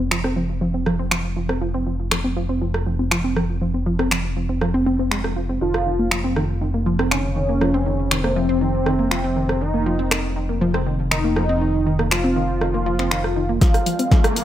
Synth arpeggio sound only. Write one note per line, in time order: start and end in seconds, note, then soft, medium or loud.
0.11 0.20 F3 loud
0.24 0.28 C4 medium
0.36 0.42 F3 medium
0.61 0.67 F3 medium
0.74 0.80 C4 medium
0.86 0.95 F3 loud
0.99 1.03 C4 loud
1.11 1.17 F3 medium
1.36 1.42 F3 medium
1.49 1.55 C4 medium
1.61 1.70 F3 loud
1.74 1.78 C4 medium
1.87 1.92 F3 medium
2.11 2.17 F3 medium
2.24 2.30 C4 medium
2.37 2.45 F3 loud
2.49 2.53 C4 medium
2.62 2.67 F3 medium
2.86 2.92 F3 medium
2.99 3.05 C4 medium
3.11 3.20 F3 loud
3.24 3.28 C4 loud
3.36 3.42 F3 medium
3.61 3.67 F3 medium
3.74 3.80 C4 medium
3.86 3.95 F3 loud
3.99 4.02 C4 loud
4.11 4.17 F3 medium
4.36 4.42 F3 medium
4.49 4.55 C4 medium
4.61 4.70 F3 loud
4.74 4.77 C4 loud
4.86 4.95 C4 loud
4.99 5.05 C4 medium
5.11 5.17 G#3 medium
5.24 5.32 F3 medium
5.36 5.45 F4 medium
5.49 5.55 C4 medium
5.61 5.67 D#3 medium
5.86 5.92 D#3 medium
5.99 6.05 A#3 medium
6.11 6.20 F3 loud
6.24 6.28 C4 loud
6.36 6.42 D#3 medium
6.61 6.67 D#3 medium
6.74 6.80 A#3 medium
6.86 6.95 F3 loud
6.99 7.03 C4 medium
7.11 7.17 D#3 medium
7.36 7.42 D#3 medium
7.49 7.55 A#3 medium
7.61 7.70 F3 loud
7.74 7.78 C4 loud
7.86 7.92 D#3 medium
8.11 8.17 D#3 medium
8.24 8.30 A#3 medium
8.36 8.45 F3 loud
8.49 8.52 C4 loud
8.61 8.67 D#3 medium
8.86 8.92 D#3 medium
8.99 9.05 A#3 medium
9.11 9.20 F3 loud
9.24 9.27 C4 loud
9.36 9.42 D#3 medium
9.61 9.67 D#3 medium
9.74 9.80 A#3 medium
9.86 9.95 F3 loud
9.99 10.03 C4 loud
10.11 10.17 D#3 medium
10.36 10.42 D#3 medium
10.49 10.55 A#3 medium
10.61 10.70 F3 loud
10.74 10.78 C4 loud
10.86 10.92 D#3 medium
11.11 11.17 D#3 medium
11.24 11.30 A#3 medium
11.36 11.45 F3 loud
11.49 11.53 C4 loud
11.61 11.67 D#3 medium
11.86 11.92 D#3 medium
11.99 12.05 A#3 medium
12.11 12.20 F3 loud
12.24 12.28 C4 loud
12.36 12.42 D#3 medium
12.61 12.67 D#3 medium
12.74 12.80 A#3 medium
12.86 12.95 F3 loud
12.99 13.03 C4 medium
13.11 13.17 D#3 medium
13.36 13.42 D#3 medium
13.49 13.55 A#3 medium
13.74 13.80 C4 medium
13.86 13.95 F3 loud
13.99 14.03 C4 loud
14.11 14.17 F3 medium
14.36 14.42 F3 medium